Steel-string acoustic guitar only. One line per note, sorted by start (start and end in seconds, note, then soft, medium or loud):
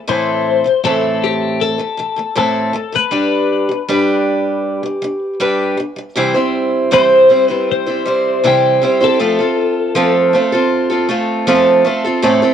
0.07 0.63 A2 medium
0.07 0.64 E3 medium
0.07 0.65 A3 medium
0.07 0.65 C4 medium
0.07 0.65 E4 medium
0.07 0.65 A4 medium
0.64 0.82 A2 soft
0.64 0.83 E3 soft
0.64 0.84 A3 medium
0.84 1.77 A2 medium
0.84 1.78 E3 medium
0.84 1.79 A3 medium
0.84 1.79 C4 medium
0.84 1.80 E4 medium
0.84 1.80 A4 medium
1.78 1.96 A2 soft
1.78 1.98 E3 soft
1.78 1.98 A3 soft
1.97 2.15 A2 medium
1.97 2.16 E3 medium
1.97 2.18 A3 medium
2.16 2.34 A2 soft
2.16 2.35 E3 soft
2.16 2.35 A3 soft
2.35 2.72 A2 medium
2.35 2.73 E3 medium
2.35 2.74 A3 medium
2.35 2.74 C4 medium
2.35 2.75 E4 medium
2.35 2.75 A4 medium
2.73 2.91 A2 medium
2.73 2.92 E3 medium
2.73 2.94 A3 medium
2.92 3.12 A2 soft
2.92 3.12 E3 soft
2.92 3.10 A3 soft
3.11 3.68 G3 medium
3.11 3.69 D4 medium
3.11 3.69 G4 medium
3.11 3.70 B4 medium
3.69 3.87 G3 soft
3.69 3.88 D4 soft
3.89 4.83 G3 medium
3.89 4.84 D4 medium
3.89 5.41 G4 medium
3.89 4.84 B4 medium
4.83 5.01 G3 soft
4.83 5.03 D4 soft
5.02 5.33 G3 medium
5.02 5.34 D4 medium
5.40 5.76 G3 medium
5.40 5.79 D4 medium
5.40 5.79 G4 medium
5.40 5.79 B4 medium
5.77 5.95 G3 medium
5.77 5.97 D4 medium
5.96 6.16 G3 soft
5.96 6.17 D4 medium
6.15 6.35 C3 medium
6.15 6.36 E3 medium
6.15 6.36 G3 medium
6.15 6.35 C4 medium
6.15 6.34 E4 medium
6.15 6.33 C5 medium
6.34 6.91 G3 soft
6.34 6.91 C4 soft
6.34 6.91 E4 medium
6.34 6.92 C5 medium
6.91 7.30 C3 medium
6.91 7.30 E3 medium
6.91 7.28 G3 medium
6.91 7.29 C4 medium
6.91 7.30 E4 medium
6.91 7.30 C5 medium
7.29 7.49 G3 soft
7.29 7.49 C4 medium
7.29 7.48 E4 medium
7.29 7.47 C5 medium
7.48 7.88 G3 soft
7.48 7.87 C4 soft
7.48 7.86 E4 soft
7.48 7.85 C5 medium
7.86 8.04 G3 soft
7.86 8.06 C4 soft
7.86 8.06 E4 soft
7.86 8.06 C5 soft
8.05 8.43 G3 medium
8.05 8.43 C4 medium
8.05 8.44 E4 medium
8.05 8.44 C5 medium
8.44 8.82 C3 medium
8.44 8.82 E3 medium
8.44 8.80 G3 medium
8.44 8.82 C4 medium
8.44 8.82 E4 medium
8.44 8.83 C5 medium
8.81 9.01 G3 medium
8.81 9.01 C4 medium
8.81 9.00 E4 medium
8.81 8.99 C5 medium
9.01 9.19 G3 soft
9.01 9.19 C4 soft
9.01 9.20 E4 soft
9.01 9.20 C5 medium
9.19 9.39 F3 medium
9.19 9.39 A3 medium
9.19 9.40 C4 medium
9.19 9.39 F4 medium
9.19 9.37 A4 medium
9.39 9.95 C4 soft
9.39 9.96 F4 soft
9.39 9.96 A4 soft
9.95 10.34 F3 medium
9.95 10.32 A3 medium
9.95 10.33 C4 medium
9.95 10.34 F4 medium
9.95 10.35 A4 medium
10.33 10.53 A3 medium
10.33 10.53 C4 medium
10.33 10.52 F4 medium
10.33 10.51 A4 medium
10.52 10.91 C4 soft
10.52 10.90 F4 soft
10.52 10.88 A4 medium
10.90 11.08 C4 soft
10.90 11.09 F4 medium
10.90 11.10 A4 medium
11.09 11.46 A3 medium
11.09 11.47 C4 medium
11.09 11.47 F4 medium
11.09 11.47 A4 medium
11.47 11.86 F3 medium
11.47 11.83 A3 medium
11.47 11.85 C4 medium
11.47 11.85 F4 medium
11.47 11.86 A4 medium
11.85 12.05 A3 medium
11.85 12.05 C4 medium
11.85 12.04 F4 medium
11.85 12.03 A4 medium
12.05 12.22 C4 soft
12.05 12.24 F4 medium
12.05 12.23 A4 medium
12.22 12.42 A2 medium
12.22 12.43 E3 medium
12.22 12.43 A3 medium
12.22 12.43 C4 medium
12.22 12.42 E4 medium
12.22 12.41 A4 medium
12.42 12.54 A3 soft
12.42 12.54 C4 medium
12.42 12.54 E4 medium
12.42 12.54 A4 medium